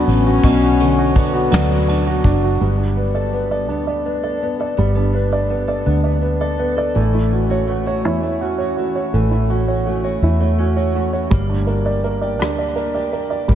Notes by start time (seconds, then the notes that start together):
Already playing: B2 D3 F#3 B3 D4 F#4
0.07 A1 C#4, ride
0.26 F#4
0.43 B1 B2 F#3, kick, ride
0.63 F#4
0.80 D3, ride
0.99 F#4
1.15 B3 D4 F#4, kick, ride
1.33 F#4
1.51 D2 F#3 D4, snare, ride
1.70 F#4
1.88 B3 D4, ride
2.07 F#4
2.24 F#1 D4, kick, ride
2.44 F#4
2.61 G1 G3 B3
2.78 B3 D4
2.97 D4 B4
3.15 A4 D5
3.33 B3 B4
3.51 A4 D5
3.69 D2 B3 D4
3.87 B3 D5
4.05 D4 B4
4.23 A4 D5
4.42 B3 B4
4.59 A4 D5
4.77 G1 G3 B3
4.95 B3 D4
5.13 D4 B4
5.32 A4 D5
5.50 B3 B4
5.67 A4 D5
5.86 D2 B3 D4
6.04 B3 D5
6.22 D4 B4
6.41 A4 D5
6.58 B3 B4
6.76 A4 D5
6.95 A1 E3 A3
7.13 A3 E4
7.31 C#4 F#4
7.50 F#4 C#5
7.67 A3 F#4
7.86 F#4 C#5
8.04 E2 E3 E4
8.23 A3 C#5
8.41 C#4 F#4
8.58 F#4 C#5
8.77 A3 F#4
8.96 F#4 C#5
9.14 A1 E3 A3
9.31 A3 E4
9.50 C#4 F#4
9.68 F#4 C#5
9.85 A3 F#4
10.04 F#4 C#5
10.22 E2 E3 E4
10.40 A3 C#5
10.58 C#4 F#4
10.77 F#4 C#5
10.95 A3 F#4
11.13 F#4 C#5
11.31 G1 G3 A#3, kick, closed hi-hat
11.49 A#3 D4
11.67 D4 A#4, closed hi-hat
11.85 G4 D5
12.04 A#3 A#4, closed hi-hat
12.21 G4 D5
12.39 D2 A#3 D4, cross-stick, closed hi-hat
12.58 A#3 D5
12.76 D4 A#4, closed hi-hat
12.95 G4 D5
13.13 A#3 A#4, closed hi-hat
13.30 G4 D5
13.48 G1 G3 A#3, kick, closed hi-hat